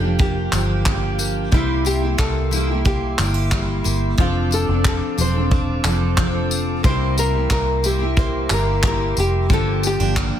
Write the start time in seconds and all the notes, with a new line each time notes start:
Already playing: F1 F3 A#3 D4 G4 A4 F5 G5
0.01 F3 A#3 D4 G4
0.19 A#3 G4, kick
0.51 G1 F3 A#3 D4 G4, clap, tambourine
0.85 F3 A#3 D4 G4, kick, clap
1.19 A#3, tambourine
1.51 C2 C3 G3 A#3 E4 G4 E5 C6, kick
1.85 E4 G4, tambourine
2.02 A#3 E4 G4
2.18 C2 A#3 A4, kick, clap
2.51 G3 A#3 E4 G4, tambourine
2.68 A#3 E4 G4
2.85 A#3 G4, kick
3.18 G1 G3 A#3 E4 F4 G4, clap, tambourine
3.34 G4
3.51 G3 A#3 E4 G4, kick, clap
3.84 G1 A#3, tambourine
4.18 F1 F3 C4 D4 F4 A4 F5 D6, kick
4.51 D4 A4, tambourine
4.68 F1 C4 D4 A4
4.85 A4, kick, clap
5.18 E1 F3 C4 D4 A4 C5, tambourine
5.34 C4 D4 A4
5.51 C4, kick
5.83 F1 F3 C4 D4 A4, clap, tambourine
6.17 F3 C4 D4 A4, kick, clap
6.51 C4, tambourine
6.83 C2 C3 G3 A#3 E4 G4 A#4 C5 E5 C6, kick
7.17 E4 A#4, tambourine
7.34 A#3 E4 G4
7.50 C2 A#3 A#4, kick, clap
7.83 G3 A#3 E4 G4, tambourine
7.99 A#3 E4 G4
8.17 A#3 C5, kick
8.49 G1 G3 A#3 E4 G4, clap, tambourine
8.54 A#4
8.82 G3 A#3 E4 G4, kick, clap
8.87 A#4
9.16 F1 A#3 G4, tambourine
9.49 G1 G2 D3 F3 A#3 D4 G4 G5, kick
9.53 A4
9.83 C4 G4, tambourine
9.99 G1 F3 A#3 D4 G4
10.16 A#3, kick, clap